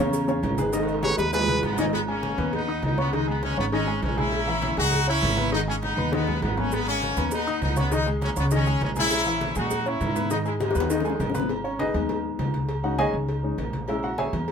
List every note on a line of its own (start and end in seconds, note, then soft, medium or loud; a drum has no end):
0.00 0.40 E2 loud
0.00 0.23 C#3 loud
0.00 0.23 C#4 loud
0.00 0.23 C#5 loud
0.13 cowbell medium
0.13 high conga soft
0.13 low agogo medium
0.13 maracas medium
0.28 0.53 C#3 medium
0.28 0.53 C#4 medium
0.28 0.53 C#5 medium
0.28 high conga soft
0.28 maracas soft
0.43 1.12 G#1 loud
0.43 cowbell medium
0.43 high conga medium
0.43 low timbale medium
0.43 low agogo loud
0.43 maracas soft
0.58 0.70 G#3 medium
0.58 0.71 G#4 medium
0.58 0.71 B4 medium
0.58 cowbell medium
0.58 high conga medium
0.58 maracas medium
0.73 0.97 D#3 medium
0.73 0.98 D#4 medium
0.73 0.98 D#5 medium
0.73 cowbell loud
0.73 high conga soft
0.73 high timbale loud
0.73 low agogo medium
0.73 maracas medium
0.83 high timbale loud
0.88 high conga soft
0.88 low agogo medium
0.88 maracas soft
0.93 high timbale medium
1.03 1.28 G#3 medium
1.03 1.28 G#4 medium
1.03 1.28 B4 medium
1.03 1.17 C#5 loud
1.03 cowbell medium
1.03 high bongo medium
1.03 high conga loud
1.03 high timbale medium
1.03 low agogo loud
1.03 maracas soft
1.18 1.60 D#2 loud
1.18 1.32 B4 loud
1.18 high bongo medium
1.18 high conga soft
1.18 maracas medium
1.33 1.46 G#3 medium
1.33 1.46 G#4 medium
1.33 1.61 B4 loud
1.33 1.46 B4 medium
1.33 cowbell loud
1.33 high bongo medium
1.33 low timbale loud
1.33 low agogo medium
1.33 maracas medium
1.43 low timbale medium
1.48 1.73 G#3 medium
1.48 1.73 G#4 medium
1.48 1.73 B4 medium
1.48 high conga medium
1.48 maracas soft
1.53 low timbale medium
1.63 2.32 G#1 medium
1.63 1.77 G#3 medium
1.63 1.77 B3 medium
1.63 cowbell medium
1.63 high conga medium
1.63 low agogo loud
1.63 maracas soft
1.73 low timbale medium
1.78 1.90 D#3 medium
1.78 1.85 A#3 medium
1.78 1.85 C#4 medium
1.78 1.90 D#4 medium
1.78 1.91 D#5 medium
1.78 cowbell medium
1.78 low bongo medium
1.78 low conga medium
1.78 maracas medium
1.83 low timbale loud
1.93 2.00 G#3 medium
1.93 2.00 B3 loud
1.93 cowbell loud
1.93 high conga soft
1.93 low agogo loud
2.08 2.32 G#3 medium
2.08 2.50 A#3 medium
2.08 2.50 C#4 loud
2.08 2.33 G#4 medium
2.08 2.33 G#5 medium
2.08 high conga soft
2.08 low agogo medium
2.23 cowbell medium
2.23 high conga medium
2.23 low timbale medium
2.38 2.80 D#2 loud
2.38 2.62 B3 medium
2.38 2.63 B4 medium
2.38 2.63 B5 medium
2.38 cowbell medium
2.38 high conga soft
2.38 low conga medium
2.38 low agogo loud
2.53 2.82 B3 medium
2.53 2.82 D#4 loud
2.53 cowbell loud
2.53 high conga soft
2.53 low conga medium
2.53 low agogo medium
2.68 2.92 D#4 medium
2.68 2.93 D#5 medium
2.68 2.93 D#6 medium
2.68 high conga soft
2.82 3.52 C#2 loud
2.82 2.97 B3 medium
2.82 2.97 D#4 medium
2.82 cowbell medium
2.82 high conga medium
2.82 low timbale medium
2.82 low agogo loud
2.98 3.12 G#3 medium
2.98 3.12 B3 loud
2.98 3.10 C#4 medium
2.98 3.10 C#5 medium
2.98 3.10 C#6 medium
2.98 cowbell medium
2.98 high conga medium
3.13 3.25 D#3 medium
3.13 3.28 G#3 medium
3.13 3.25 D#4 medium
3.13 3.28 D#4 loud
3.13 3.25 D#5 medium
3.13 cowbell loud
3.13 high conga soft
3.13 low agogo medium
3.27 3.52 G#3 medium
3.27 3.42 G#3 medium
3.27 3.42 B3 medium
3.27 3.52 G#4 medium
3.27 3.52 G#5 medium
3.27 low agogo medium
3.43 3.57 G#3 medium
3.43 3.57 C#4 loud
3.43 cowbell medium
3.43 high conga medium
3.43 low timbale medium
3.43 low agogo loud
3.57 3.99 G#1 loud
3.57 3.65 G#3 medium
3.57 3.65 B3 loud
3.57 3.70 C#4 medium
3.57 3.70 C#5 medium
3.57 3.70 C#6 medium
3.57 high conga soft
3.72 3.85 D#3 medium
3.72 4.01 G#3 medium
3.72 4.01 C#4 loud
3.72 3.85 D#4 medium
3.72 3.85 D#5 medium
3.72 cowbell loud
3.72 high conga soft
3.72 low agogo medium
3.87 4.12 G#3 medium
3.87 4.12 G#4 medium
3.87 4.12 G#5 medium
3.87 high conga soft
4.02 4.72 A#1 loud
4.02 4.17 G#3 medium
4.02 4.17 C#4 medium
4.02 cowbell medium
4.02 high conga medium
4.02 low timbale medium
4.02 low agogo loud
4.17 4.42 G#3 medium
4.17 4.78 C#4 medium
4.17 4.78 E4 loud
4.17 4.42 G#4 medium
4.17 4.42 G#5 medium
4.17 cowbell medium
4.17 high conga medium
4.32 cowbell loud
4.32 high conga soft
4.32 low agogo loud
4.47 4.72 E3 medium
4.47 4.72 E4 medium
4.47 4.72 E5 medium
4.47 high conga soft
4.47 low agogo loud
4.62 cowbell medium
4.62 high conga loud
4.62 low timbale medium
4.77 5.19 C#2 loud
4.77 5.02 G#3 medium
4.77 5.06 D#4 medium
4.77 5.06 F#4 loud
4.77 5.02 G#4 medium
4.77 5.02 G#5 medium
4.77 cowbell medium
4.77 high conga soft
4.77 low conga medium
4.77 low agogo loud
4.92 cowbell loud
4.92 high conga soft
4.92 low conga medium
4.92 low agogo medium
5.07 5.32 C#4 medium
5.07 5.49 C#4 loud
5.07 5.49 E4 loud
5.07 5.32 C#5 medium
5.07 5.32 C#6 medium
5.07 high conga soft
5.22 5.92 G#1 loud
5.22 cowbell medium
5.22 high conga medium
5.22 low timbale medium
5.22 low agogo loud
5.37 5.49 B3 medium
5.37 5.50 B4 medium
5.37 5.50 B5 medium
5.37 cowbell medium
5.37 high conga medium
5.52 5.65 D#3 loud
5.52 5.59 B3 medium
5.52 5.65 D#4 medium
5.52 5.60 D#4 loud
5.52 5.65 D#5 loud
5.52 cowbell loud
5.52 high conga soft
5.52 low agogo medium
5.67 5.92 G#3 medium
5.67 5.75 A#3 medium
5.67 5.75 C#4 loud
5.67 5.92 G#4 medium
5.67 5.92 G#5 medium
5.67 high conga soft
5.67 low agogo medium
5.82 6.10 B3 medium
5.82 6.10 D#4 loud
5.82 cowbell medium
5.82 high conga medium
5.82 low timbale medium
5.82 low agogo loud
5.97 6.39 D#2 loud
5.97 6.10 B3 medium
5.97 6.10 B4 medium
5.97 6.10 B5 medium
5.97 high conga medium
6.12 6.25 D#3 medium
6.12 6.41 G#3 medium
6.12 6.41 B3 loud
6.12 6.25 D#4 medium
6.12 6.25 D#5 medium
6.12 cowbell loud
6.12 high conga loud
6.12 low agogo medium
6.27 6.52 G#3 medium
6.27 6.52 G#4 medium
6.27 6.52 G#5 medium
6.27 low conga loud
6.42 7.11 G#1 loud
6.42 6.56 G#3 medium
6.42 6.56 B3 medium
6.42 cowbell medium
6.42 low conga loud
6.42 low timbale medium
6.42 low agogo loud
6.57 6.72 A#3 medium
6.57 6.82 B3 medium
6.57 6.72 C#4 loud
6.57 6.82 B4 medium
6.57 6.82 B5 medium
6.57 cowbell medium
6.57 low conga loud
6.72 6.87 G#3 medium
6.72 6.88 B3 loud
6.72 cowbell loud
6.72 high conga soft
6.72 low agogo loud
6.72 maracas medium
6.87 7.11 G#3 medium
6.87 7.29 A#3 medium
6.87 7.29 C#4 loud
6.87 7.12 G#4 medium
6.87 7.12 G#5 medium
6.87 high conga soft
6.87 low agogo medium
6.87 maracas soft
7.02 cowbell medium
7.02 high conga medium
7.02 low timbale medium
7.02 maracas soft
7.17 7.59 D#2 loud
7.17 7.41 B3 medium
7.17 7.42 B4 medium
7.17 7.42 B5 medium
7.17 cowbell medium
7.17 high conga soft
7.17 low conga medium
7.17 low agogo loud
7.17 maracas medium
7.31 7.60 B3 medium
7.31 7.60 D#4 loud
7.31 cowbell loud
7.31 high conga soft
7.31 low agogo medium
7.31 maracas medium
7.47 7.71 D#4 medium
7.47 7.71 D#5 medium
7.47 7.72 D#6 medium
7.47 high conga soft
7.47 maracas soft
7.62 8.31 C#2 loud
7.62 7.76 B3 medium
7.62 7.76 D#4 loud
7.62 cowbell medium
7.62 high conga medium
7.62 low timbale medium
7.62 low agogo loud
7.62 maracas soft
7.76 7.91 G#3 medium
7.76 7.91 B3 loud
7.76 7.89 C#4 medium
7.76 7.89 C#5 medium
7.76 7.89 C#6 medium
7.76 cowbell medium
7.76 high conga medium
7.76 maracas medium
7.91 8.04 D#3 medium
7.91 8.07 G#3 medium
7.91 8.04 D#4 medium
7.91 8.07 D#4 loud
7.91 8.04 D#5 medium
7.91 cowbell loud
7.91 high conga soft
7.91 low agogo loud
7.91 maracas medium
8.06 8.31 G#3 medium
8.06 8.31 G#4 medium
8.06 8.31 G#5 medium
8.06 high conga soft
8.06 low agogo medium
8.06 maracas soft
8.21 8.29 G#3 medium
8.21 8.29 C#4 loud
8.21 cowbell medium
8.21 high conga medium
8.21 low timbale medium
8.21 low agogo loud
8.21 maracas soft
8.36 8.78 C#2 loud
8.36 8.45 G#3 medium
8.36 8.45 B3 medium
8.36 8.49 C#4 medium
8.36 8.49 C#5 medium
8.36 8.49 C#6 medium
8.36 high conga soft
8.36 maracas medium
8.51 8.64 D#3 loud
8.51 8.80 G#3 medium
8.51 8.80 C#4 loud
8.51 8.64 D#4 medium
8.51 8.64 D#5 medium
8.51 cowbell loud
8.51 high conga soft
8.51 low agogo loud
8.51 maracas medium
8.66 8.91 G#3 medium
8.66 8.91 G#4 medium
8.66 8.91 G#5 medium
8.66 high conga soft
8.66 maracas soft
8.80 9.50 A#1 medium
8.80 8.89 G#3 medium
8.80 8.89 C#4 medium
8.80 cowbell medium
8.80 high conga loud
8.80 low timbale medium
8.80 low agogo loud
8.80 maracas soft
8.96 9.21 G#3 medium
8.96 9.53 C#4 loud
8.96 9.53 E4 loud
8.96 9.21 G#4 medium
8.96 9.21 G#5 medium
8.96 cowbell medium
8.96 high conga medium
8.96 maracas medium
9.11 cowbell loud
9.11 high conga soft
9.11 low agogo loud
9.11 maracas medium
9.26 9.51 E3 medium
9.26 9.51 E4 medium
9.26 9.51 E5 medium
9.26 high conga soft
9.26 low agogo medium
9.26 maracas soft
9.41 cowbell medium
9.41 high conga medium
9.41 low timbale medium
9.41 maracas soft
9.55 9.98 A#2 loud
9.55 9.81 G#3 medium
9.55 9.86 D#4 medium
9.55 9.86 F#4 loud
9.55 9.81 G#4 medium
9.55 9.81 G#5 medium
9.55 cowbell medium
9.55 high conga soft
9.55 low conga medium
9.55 low agogo loud
9.55 maracas medium
9.71 cowbell loud
9.71 high conga soft
9.71 low conga medium
9.71 low agogo medium
9.71 maracas medium
9.86 10.10 C#4 medium
9.86 10.31 C#4 medium
9.86 10.31 E4 loud
9.86 10.10 C#5 medium
9.86 10.11 C#6 medium
9.86 high conga soft
9.86 maracas soft
10.01 10.70 G#2 loud
10.01 cowbell medium
10.01 high conga medium
10.01 low timbale medium
10.01 low agogo loud
10.01 maracas soft
10.15 10.28 B3 medium
10.15 10.28 B4 medium
10.15 10.28 B5 medium
10.15 cowbell medium
10.15 high conga medium
10.15 maracas medium
10.30 10.43 D#3 medium
10.30 10.37 B3 medium
10.30 10.43 D#4 medium
10.30 10.38 D#4 loud
10.30 10.43 D#5 medium
10.30 cowbell loud
10.30 high conga soft
10.30 low agogo medium
10.30 maracas medium
10.45 10.70 G#3 medium
10.45 10.53 G#3 medium
10.45 10.53 E4 medium
10.45 10.70 G#4 medium
10.45 10.70 G#5 medium
10.45 high conga soft
10.45 low agogo loud
10.45 maracas soft
10.60 10.89 G#3 medium
10.60 10.89 D#4 medium
10.60 cowbell medium
10.60 high bongo medium
10.60 high conga loud
10.60 low timbale medium
10.60 low agogo loud
10.60 maracas soft
10.71 high bongo loud
10.75 11.17 D#2 loud
10.75 10.88 B3 medium
10.75 10.88 B4 medium
10.75 10.88 B5 medium
10.75 high conga soft
10.75 maracas medium
10.80 high bongo loud
10.90 11.02 D#3 medium
10.90 11.32 G#3 medium
10.90 11.02 D#4 medium
10.90 11.32 D#4 medium
10.90 11.03 D#5 medium
10.90 cowbell loud
10.90 high conga soft
10.90 high timbale medium
10.90 low agogo medium
10.90 maracas loud
11.00 low bongo medium
11.04 11.29 G#3 medium
11.04 11.29 G#4 medium
11.04 11.30 G#5 medium
11.04 high conga soft
11.04 high timbale medium
11.04 maracas soft
11.10 low bongo medium
11.20 11.89 G#1 medium
11.20 cowbell medium
11.20 low bongo medium
11.20 high conga medium
11.20 low timbale medium
11.20 low agogo loud
11.20 maracas soft
11.30 low bongo medium
11.34 11.47 B3 medium
11.34 11.47 B4 medium
11.34 11.47 B5 medium
11.34 cowbell medium
11.34 high conga medium
11.34 low timbale medium
11.34 maracas medium
11.40 low bongo medium
11.49 cowbell loud
11.49 high conga soft
11.49 low agogo loud
11.64 11.79 C#4 medium
11.64 11.79 C#5 medium
11.64 high conga soft
11.64 low agogo loud
11.79 11.93 D#4 medium
11.79 11.94 G#4 medium
11.79 11.94 B4 medium
11.79 11.94 D#5 medium
11.79 cowbell medium
11.79 high conga medium
11.79 low timbale medium
11.94 12.36 D#2 loud
11.94 12.65 G#3 medium
11.94 12.65 B3 medium
11.94 12.65 D#4 medium
11.94 cowbell medium
11.94 high conga soft
11.94 low conga medium
11.94 low agogo loud
12.09 cowbell loud
12.09 high conga soft
12.09 low conga medium
12.09 low agogo medium
12.24 high conga soft
12.39 13.08 C#2 medium
12.39 cowbell medium
12.39 high conga loud
12.39 low timbale medium
12.39 low agogo loud
12.54 cowbell medium
12.54 high conga medium
12.69 cowbell loud
12.69 high conga soft
12.69 low agogo medium
12.83 13.42 G#3 soft
12.83 13.42 C#4 medium
12.83 13.43 D#4 medium
12.83 12.99 F#4 medium
12.83 12.98 F#5 medium
12.83 high conga soft
12.83 low agogo medium
12.98 13.13 G#4 medium
12.98 13.13 C#5 medium
12.98 13.13 D#5 medium
12.98 13.13 G#5 loud
12.98 cowbell medium
12.98 high conga loud
12.98 low timbale medium
12.98 low agogo loud
13.13 13.55 C#2 loud
13.13 high conga soft
13.28 cowbell loud
13.28 high conga soft
13.28 low agogo medium
13.43 13.57 G#3 soft
13.43 13.57 C#4 soft
13.43 13.57 D#4 medium
13.43 high conga soft
13.58 14.27 A#1 medium
13.58 cowbell medium
13.58 high conga medium
13.58 low timbale medium
13.58 low agogo loud
13.73 cowbell medium
13.73 high conga medium
13.88 14.08 G#3 medium
13.88 14.08 C#4 soft
13.88 14.09 E4 medium
13.88 cowbell loud
13.88 high conga soft
13.88 low agogo loud
14.03 14.18 F#4 medium
14.03 14.18 F#5 medium
14.03 high conga soft
14.03 low agogo medium
14.18 14.33 G#4 medium
14.18 14.33 C#5 medium
14.18 14.33 E5 medium
14.18 14.33 G#5 medium
14.18 cowbell medium
14.18 high conga medium
14.18 low timbale medium
14.33 14.52 E2 loud
14.33 cowbell medium
14.33 high conga soft
14.33 low conga medium
14.33 low agogo loud
14.48 cowbell loud
14.48 high conga soft
14.48 low agogo loud